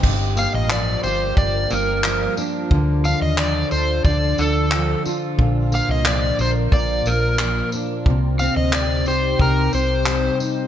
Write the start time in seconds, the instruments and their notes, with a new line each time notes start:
Already playing: steel-string acoustic guitar C3 G3 G4
0.02 fingered electric bass G1, steel-string acoustic guitar G2, ambient pad G3 D4 F4 A#4, kick, crash
0.36 steel-string acoustic guitar A#3, electric slide guitar F5, tambourine
0.54 fingered electric bass A1, electric slide guitar D#5
0.70 steel-string acoustic guitar F3, electric slide guitar D5, clap
1.03 fingered electric bass G1, steel-string acoustic guitar G4, electric slide guitar C5, tambourine
1.37 fingered electric bass G1, steel-string acoustic guitar G2, electric slide guitar D5, kick
1.70 fingered electric bass G1, steel-string acoustic guitar A#3, electric slide guitar A#4, tambourine
2.04 steel-string acoustic guitar F3, clap
2.37 steel-string acoustic guitar D4, tambourine
2.70 fingered electric bass D2, ambient pad D3 A4, steel-string acoustic guitar D3, kick
3.05 steel-string acoustic guitar D4, electric slide guitar F5, tambourine
3.21 fingered electric bass D#2, electric slide guitar D#5
3.38 steel-string acoustic guitar F3, electric slide guitar D5, clap
3.71 fingered electric bass D2, steel-string acoustic guitar A4, electric slide guitar C5, tambourine
4.05 fingered electric bass D2, steel-string acoustic guitar D3, electric slide guitar D5, kick
4.38 fingered electric bass D2, steel-string acoustic guitar D4, electric slide guitar A4, tambourine
4.72 steel-string acoustic guitar F3, clap
5.05 steel-string acoustic guitar F4, tambourine
5.38 fingered electric bass A#1, steel-string acoustic guitar A#2, ambient pad A#3, kick
5.72 steel-string acoustic guitar A#3, electric slide guitar F5, tambourine
5.89 fingered electric bass C2, electric slide guitar D#5
6.05 steel-string acoustic guitar F3, electric slide guitar D5, clap
6.39 fingered electric bass A#1, steel-string acoustic guitar A#4, electric slide guitar C5, tambourine
6.72 fingered electric bass A#1, steel-string acoustic guitar A#2, electric slide guitar D5, kick
7.05 fingered electric bass A#1, steel-string acoustic guitar A#3, electric slide guitar A#4, tambourine
7.39 steel-string acoustic guitar F3, clap
7.72 steel-string acoustic guitar D4, tambourine
8.06 fingered electric bass C2, ambient pad C3 C4 D#4 G4, steel-string acoustic guitar C3, kick
8.39 steel-string acoustic guitar C4, electric slide guitar F5, tambourine
8.56 fingered electric bass D2, electric slide guitar D#5
8.73 steel-string acoustic guitar G3, electric slide guitar D5, clap
9.06 fingered electric bass C2, steel-string acoustic guitar G4, electric slide guitar C5, tambourine
9.39 fingered electric bass C2, steel-string acoustic guitar C3, electric slide guitar A#4, kick
9.73 fingered electric bass C2, steel-string acoustic guitar C4, electric slide guitar C5, tambourine
10.06 steel-string acoustic guitar G3, clap
10.40 steel-string acoustic guitar D#4, tambourine